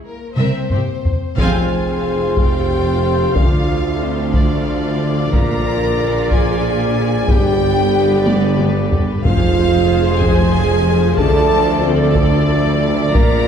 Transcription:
0.05 0.35 A#3 medium
0.05 0.35 A#4 medium
0.36 0.44 C2 medium
0.36 0.45 C2 soft
0.36 1.02 A#3 soft
0.36 0.69 C4 soft
0.36 1.40 C4 medium
0.36 0.69 A#4 soft
0.36 1.39 C5 medium
0.36 0.68 E5 soft
0.36 taiko mid medium
0.70 0.79 C2 soft
0.70 0.79 C4 soft
0.70 0.80 C5 soft
0.70 taiko low-mid medium
0.74 0.82 G4 soft
1.05 taiko low medium
1.36 3.31 F1 medium
1.36 3.32 F2 medium
1.36 5.29 F3 medium
1.36 3.31 C4 medium
1.36 3.32 C4 medium
1.36 5.31 F4 medium
1.36 2.33 G#4 medium
1.36 3.31 C5 medium
1.36 5.29 F5 medium
1.36 2.34 G#5 medium
1.36 taiko medium
2.36 3.35 G4 medium
2.36 3.36 G5 medium
2.36 taiko medium
3.35 5.30 D2 soft
3.35 5.30 D2 medium
3.35 7.26 D3 soft
3.35 5.30 A3 soft
3.35 4.01 F4 medium
3.35 7.25 D5 medium
3.35 4.00 F5 medium
3.35 taiko medium
4.01 4.34 C4 medium
4.01 4.34 C5 medium
4.33 5.15 D4 medium
4.33 5.32 D5 medium
4.33 taiko medium
5.32 7.30 A#1 medium
5.32 7.25 A#1 medium
5.32 7.26 A#2 medium
5.32 7.25 F3 medium
5.32 7.25 A#3 medium
5.32 7.25 F4 medium
5.32 6.29 A#4 medium
5.32 7.25 D5 medium
5.32 6.32 A#5 medium
5.32 taiko medium
6.30 7.29 G#4 medium
6.30 7.28 G#5 medium
6.30 taiko medium
7.28 9.08 G1 medium
7.28 9.24 G1 medium
7.28 9.24 G2 medium
7.28 9.08 D3 medium
7.28 9.21 D3 medium
7.28 9.08 B3 medium
7.28 8.25 G4 medium
7.28 9.21 G4 medium
7.28 9.20 B4 medium
7.28 9.07 D5 medium
7.28 8.28 G5 medium
7.28 taiko medium
8.26 8.60 D4 medium
8.26 8.59 D5 medium
8.26 taiko high medium
8.59 taiko high medium
8.92 taiko low medium
9.23 11.14 F1 medium
9.23 10.17 F2 medium
9.23 11.14 F2 medium
9.23 13.11 F3 medium
9.23 11.15 G#3 medium
9.23 10.17 F4 loud
9.23 11.15 G#4 medium
9.23 11.14 C5 medium
9.23 10.18 F5 medium
9.23 taiko medium
10.21 11.18 G#4 loud
10.21 11.18 G#5 medium
10.21 taiko medium
11.17 13.16 D2 medium
11.17 13.11 D2 medium
11.17 13.15 A3 medium
11.17 11.81 A4 loud
11.17 13.11 A4 medium
11.17 13.48 D5 medium
11.17 11.81 A5 medium
11.17 taiko medium
11.82 12.15 C4 medium
11.82 12.16 C5 medium
12.14 13.14 D4 medium
12.14 13.14 D5 medium
12.14 taiko medium
13.13 13.48 A#1 medium
13.13 13.48 A#2 medium
13.13 13.48 F3 medium
13.13 13.48 A#3 medium
13.13 13.48 A#4 loud
13.13 13.48 A#4 medium
13.13 13.48 A#5 medium
13.13 taiko medium

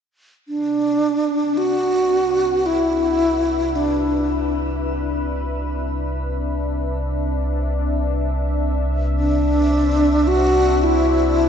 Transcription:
0.45 11.49 C2 medium
0.45 11.49 C3 medium
0.45 1.59 D4 medium
1.02 11.49 D4 medium
1.21 11.49 C4 medium
1.57 2.68 F#4 loud
1.96 9.91 B4 medium
2.66 3.77 E4 medium
3.50 11.49 E5 medium
3.75 4.56 D4 medium
9.19 10.29 D4 medium
9.60 11.49 C5 medium
10.27 10.85 F#4 medium
10.84 11.49 E4 medium

